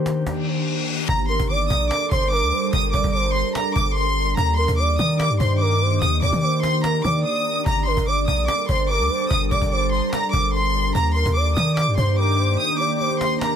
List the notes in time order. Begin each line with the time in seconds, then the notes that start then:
Already playing: D#3 A#3 D4 G4 C5
0.06 cajon slap
0.11 cajon slap
0.16 cajon slap
0.21 cajon slap
0.26 cajon bass, cajon slap, reverse cymbal
1.09 G1 G3 D4 A4 A#4 A#5, cajon bass
1.19 cajon slap
1.29 A#4 C6
1.40 G1, cajon bass
1.50 D5 D6, cajon slap
1.60 cajon slap
1.70 A#1 D#6, cajon bass
1.90 D6, cajon slap
2.01 cajon slap
2.11 G1 C5 C6, cajon bass
2.32 A#4 D6, cajon slap
2.42 D2, cajon slap
2.52 C5, cajon slap
2.58 cajon slap
2.63 cajon slap
2.68 cajon slap
2.73 G1 D#6, cajon bass
2.83 cajon slap
2.93 G1 D5 D6, cajon bass
3.04 G1, cajon bass
3.14 C5 D6, cajon slap
3.35 C6, cajon slap
3.45 cajon slap
3.55 A#5, cajon slap
3.66 cajon slap
3.75 G1 D6, cajon bass
3.86 cajon slap
3.96 C6, cajon slap
4.07 cajon slap
4.17 cajon slap
4.22 cajon slap
4.27 cajon slap
4.32 cajon slap
4.37 D#2 D#3 A#3 G4 A#5, cajon bass
4.48 cajon slap
4.58 A#4 C6, cajon slap
4.68 D#2, cajon bass
4.79 D5 D6
4.89 cajon slap
4.99 D#3 D#6, cajon bass
5.20 D6, cajon slap
5.30 G2
5.40 G2 C5 C6, cajon bass
5.50 cajon slap
5.61 A#4 D6, cajon slap
5.71 cajon slap
5.81 C5, cajon slap
5.86 cajon slap
5.91 cajon slap
5.97 cajon slap
6.02 D#2 D#6, cajon bass
6.12 cajon slap
6.22 D#2 D5 D6, cajon bass
6.33 D#3, cajon bass
6.43 C5 D6
6.53 cajon slap
6.63 C6, cajon slap
6.68 cajon slap
6.79 cajon slap
6.84 A#4 A#5, cajon slap
6.94 cajon slap
7.04 D#3 D5 D6, cajon bass
7.15 cajon slap
7.25 D#6
7.66 G1 G3 A4 A#4 A#5, cajon bass
7.76 cajon slap
7.87 A#4 C6, cajon slap
7.97 G1, cajon bass
8.07 D5 D6, cajon slap
8.18 cajon slap
8.28 A#1 D#6, cajon bass
8.48 D6, cajon slap
8.59 cajon slap
8.69 G1 C5 C6, cajon bass
8.79 cajon slap
8.89 A#4 D6, cajon slap
9.00 D2, cajon slap
9.10 C5, cajon slap
9.15 cajon slap
9.20 cajon slap
9.26 cajon slap
9.31 G1 D#6, cajon bass
9.41 cajon slap
9.51 G1 D5 D6, cajon bass
9.61 G1, cajon bass
9.72 C5 D6, cajon slap
9.92 C6, cajon slap
10.03 cajon slap
10.13 A#5, cajon slap
10.23 cajon slap
10.33 G1 D6, cajon bass
10.44 cajon slap
10.54 C6, cajon slap
10.64 cajon slap
10.74 cajon slap
10.80 cajon slap
10.85 cajon slap
10.90 cajon slap
10.95 D#2 D#3 A#3 D4 G4 A#5, cajon bass
11.05 cajon slap
11.15 A#4 C6, cajon slap
11.26 D#2, cajon bass
11.36 D5 D6
11.46 cajon slap
11.57 D#3 D#6, cajon bass
11.77 D6, cajon slap
11.87 G2, cajon slap
11.98 G2 C5 C6, cajon bass
12.08 cajon slap
12.18 A#4 D6, cajon slap
12.39 C5, cajon slap
12.44 cajon slap
12.49 cajon slap
12.54 cajon slap
12.59 D#6, cajon slap
12.70 cajon slap
12.80 D5 D6, cajon slap
13.00 C5 D6, cajon slap
13.11 cajon slap
13.21 C6, cajon slap
13.36 cajon slap
13.41 A#4 A#5, cajon slap
13.52 cajon slap